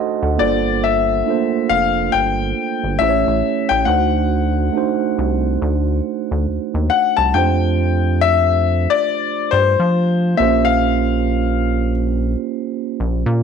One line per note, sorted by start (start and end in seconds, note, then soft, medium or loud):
0.00 0.21 F#4 medium
0.00 0.24 A4 medium
0.00 0.40 C5 medium
0.00 0.40 D#5 medium
0.00 0.23 F#5 medium
0.00 0.41 A5 medium
0.00 0.41 C6 medium
0.23 0.38 D2 medium
0.23 0.40 A4 soft
0.23 0.63 F#5 medium
0.38 1.22 G1 loud
0.38 1.19 A#3 medium
0.38 1.19 D4 medium
0.38 1.20 F4 medium
0.38 1.20 A4 medium
0.38 0.84 D5 medium
0.42 1.21 C5 medium
0.84 1.72 E5 medium
1.25 1.33 A3 medium
1.25 2.87 D4 medium
1.25 2.87 F4 medium
1.25 2.88 A4 medium
1.30 2.89 A#3 medium
1.30 2.89 C5 medium
1.69 2.09 F1 medium
1.69 2.14 F5 medium
2.12 2.53 G1 medium
2.12 3.02 G5 loud
2.84 2.99 G1 medium
2.99 3.24 A1 loud
2.99 3.79 A3 medium
2.99 3.80 C#4 medium
2.99 3.80 E4 medium
2.99 3.81 G4 medium
2.99 3.71 E5 loud
3.03 3.09 C5 medium
3.09 3.85 C#5 medium
3.27 3.42 A1 medium
3.69 3.86 A1 loud
3.69 3.87 G5 loud
3.85 4.70 D2 medium
3.85 4.66 A3 medium
3.85 4.67 D4 medium
3.85 4.67 D#4 medium
3.85 4.68 F#4 medium
3.85 6.86 F#5 medium
3.89 4.68 C5 medium
4.73 6.34 A3 medium
4.73 6.34 D4 medium
4.73 6.35 D#4 medium
4.73 6.35 F#4 medium
4.77 6.36 C5 medium
5.19 5.58 C2 medium
5.62 6.01 D2 medium
6.31 6.47 D2 medium
6.49 6.59 D#2 medium
6.74 6.90 D#2 medium
6.90 7.15 F#5 medium
7.17 7.33 C2 loud
7.17 7.34 A5 loud
7.33 8.87 F2 loud
7.33 7.42 G#3 medium
7.33 8.95 D4 medium
7.33 8.96 F4 medium
7.33 8.96 G4 medium
7.33 8.24 G5 loud
7.38 8.98 A3 medium
7.38 8.97 C5 medium
8.21 8.93 E5 loud
8.90 9.53 D5 loud
9.51 9.76 G2 medium
9.51 10.41 C5 medium
9.80 10.35 F3 loud
10.37 12.35 A#1 loud
10.37 11.99 A#3 medium
10.37 10.47 C4 medium
10.37 12.00 F4 medium
10.37 12.00 G4 medium
10.37 10.65 E5 medium
10.42 12.03 C#4 medium
10.42 12.01 C5 medium
10.65 11.91 F5 medium
13.00 13.24 A#1 loud
13.26 13.42 A#2 loud